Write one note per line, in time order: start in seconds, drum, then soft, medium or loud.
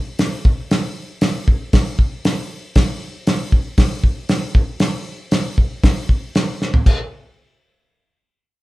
0.19 snare loud
0.19 open hi-hat medium
0.45 kick loud
0.71 snare loud
0.71 open hi-hat medium
1.21 snare loud
1.21 open hi-hat medium
1.48 kick medium
1.73 kick loud
1.73 snare loud
1.73 open hi-hat medium
1.99 kick medium
2.25 snare loud
2.25 open hi-hat medium
2.75 kick loud
2.75 snare loud
2.75 open hi-hat medium
3.27 snare loud
3.27 open hi-hat medium
3.52 kick medium
3.78 kick loud
3.78 snare loud
3.78 open hi-hat medium
4.04 kick medium
4.29 snare loud
4.29 open hi-hat medium
4.55 kick loud
4.80 snare loud
4.80 open hi-hat medium
5.31 snare loud
5.31 open hi-hat medium
5.58 kick medium
5.83 kick loud
5.83 snare loud
5.83 open hi-hat medium
6.09 kick medium
6.35 snare loud
6.35 open hi-hat soft
6.62 snare medium
6.74 floor tom medium
6.86 kick loud
6.86 crash medium